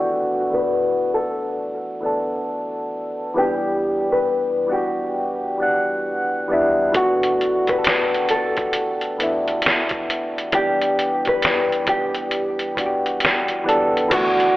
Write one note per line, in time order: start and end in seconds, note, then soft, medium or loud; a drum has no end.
0.00 0.28 E3 medium
0.00 0.29 A3 medium
0.00 0.29 B3 medium
0.00 0.30 D4 medium
0.00 0.31 F#4 loud
0.00 0.49 F#4 medium
0.50 1.61 E3 medium
0.50 1.62 A3 medium
0.50 1.62 B3 medium
0.50 1.63 D4 medium
0.50 1.10 B4 medium
0.54 1.63 F#4 medium
1.14 3.33 A4 medium
2.01 3.03 E3 medium
2.01 3.04 A3 soft
2.01 3.05 B3 medium
2.01 3.05 D4 soft
2.06 3.06 A4 medium
3.34 4.37 E3 loud
3.34 4.38 G3 medium
3.34 4.39 B3 medium
3.34 4.39 D4 medium
3.34 4.07 G4 medium
3.39 4.40 G4 medium
4.12 4.68 B4 medium
4.67 5.41 E3 medium
4.67 5.42 G3 medium
4.67 5.43 B3 medium
4.67 5.43 D4 medium
4.72 4.80 F#4 medium
4.72 6.02 G4 medium
4.78 5.47 G4 medium
5.58 6.32 E3 medium
5.58 6.32 G3 soft
5.58 6.33 B3 medium
5.58 6.34 D4 medium
5.62 6.34 F#5 medium
6.48 6.86 E3 medium
6.48 6.86 G3 medium
6.48 6.87 B3 medium
6.48 6.87 D4 medium
6.53 6.88 E4 medium
6.92 7.44 E3 medium
6.92 7.45 A3 medium
6.92 7.46 B3 medium
6.92 7.46 D4 medium
6.92 7.65 F#4 medium
6.92 kick loud
6.92 closed hi-hat medium
6.97 7.47 F#4 loud
7.23 closed hi-hat soft
7.41 closed hi-hat soft
7.67 8.78 E3 medium
7.67 8.78 A3 medium
7.67 8.79 B3 medium
7.67 8.80 D4 medium
7.67 8.26 B4 medium
7.67 kick medium
7.67 closed hi-hat soft
7.72 7.75 G4 medium
7.78 8.83 A4 medium
7.84 snare loud
7.84 closed hi-hat medium
8.14 closed hi-hat soft
8.29 10.50 A4 medium
8.29 closed hi-hat medium
8.57 kick medium
8.57 closed hi-hat soft
8.73 closed hi-hat medium
9.01 closed hi-hat soft
9.18 10.20 E3 medium
9.18 10.21 A3 medium
9.18 10.22 B3 medium
9.18 10.22 D4 medium
9.18 closed hi-hat medium
9.23 10.23 E4 medium
9.48 closed hi-hat soft
9.62 closed hi-hat medium
9.66 snare medium
9.89 kick medium
9.89 closed hi-hat soft
10.10 closed hi-hat medium
10.38 closed hi-hat soft
10.52 11.55 E3 loud
10.52 11.55 G3 medium
10.52 11.56 B3 medium
10.52 11.57 D4 medium
10.52 11.24 G4 medium
10.52 kick loud
10.52 closed hi-hat medium
10.57 11.57 G4 loud
10.81 closed hi-hat soft
10.99 closed hi-hat medium
11.25 11.85 B4 medium
11.25 kick medium
11.25 closed hi-hat soft
11.42 snare loud
11.42 closed hi-hat medium
11.72 closed hi-hat soft
11.84 12.58 E3 medium
11.84 12.59 G3 medium
11.84 12.60 B3 medium
11.84 12.60 D4 medium
11.84 kick medium
11.84 closed hi-hat medium
11.89 13.18 G4 medium
11.89 12.61 G4 medium
12.14 closed hi-hat soft
12.31 closed hi-hat medium
12.59 closed hi-hat soft
12.75 13.48 E3 medium
12.75 13.49 G3 medium
12.75 13.50 B3 medium
12.75 13.50 D4 medium
12.75 kick medium
12.75 closed hi-hat medium
12.80 12.87 F#4 medium
12.86 13.54 G4 medium
13.06 closed hi-hat soft
13.20 closed hi-hat medium
13.25 snare medium
13.48 closed hi-hat soft
13.64 14.02 E3 medium
13.64 14.02 G3 medium
13.64 14.03 B3 medium
13.64 14.04 D4 medium
13.69 14.04 A4 loud
13.69 closed hi-hat medium
13.97 closed hi-hat soft
14.08 14.57 D2 loud
14.08 14.57 E3 loud
14.08 14.57 A3 medium
14.08 14.57 B3 medium
14.08 14.57 D4 medium
14.08 14.57 F#4 medium
14.08 kick loud
14.08 closed hi-hat medium
14.08 crash medium
14.08 shaker medium
14.13 14.57 F#4 loud
14.40 closed hi-hat soft